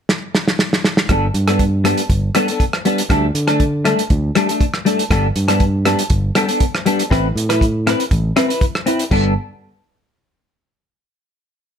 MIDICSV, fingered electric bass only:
0, 0, Header, 1, 2, 480
1, 0, Start_track
1, 0, Key_signature, 1, "major"
1, 0, Tempo, 502092
1, 1044, Time_signature, 4, 2, 24, 8
1, 11265, End_track
2, 0, Start_track
2, 0, Title_t, "Fingered electric bass"
2, 0, Program_c, 0, 33
2, 1042, Note_on_c, 0, 31, 111
2, 1229, Note_off_c, 0, 31, 0
2, 1282, Note_on_c, 0, 43, 80
2, 1840, Note_off_c, 0, 43, 0
2, 2003, Note_on_c, 0, 31, 88
2, 2189, Note_off_c, 0, 31, 0
2, 2965, Note_on_c, 0, 38, 115
2, 3150, Note_off_c, 0, 38, 0
2, 3198, Note_on_c, 0, 50, 83
2, 3756, Note_off_c, 0, 50, 0
2, 3922, Note_on_c, 0, 38, 91
2, 4108, Note_off_c, 0, 38, 0
2, 4882, Note_on_c, 0, 31, 108
2, 5067, Note_off_c, 0, 31, 0
2, 5121, Note_on_c, 0, 43, 86
2, 5677, Note_off_c, 0, 43, 0
2, 5834, Note_on_c, 0, 31, 95
2, 6021, Note_off_c, 0, 31, 0
2, 6799, Note_on_c, 0, 33, 104
2, 6984, Note_off_c, 0, 33, 0
2, 7030, Note_on_c, 0, 45, 85
2, 7589, Note_off_c, 0, 45, 0
2, 7756, Note_on_c, 0, 33, 93
2, 7942, Note_off_c, 0, 33, 0
2, 8712, Note_on_c, 0, 31, 101
2, 8938, Note_off_c, 0, 31, 0
2, 11265, End_track
0, 0, End_of_file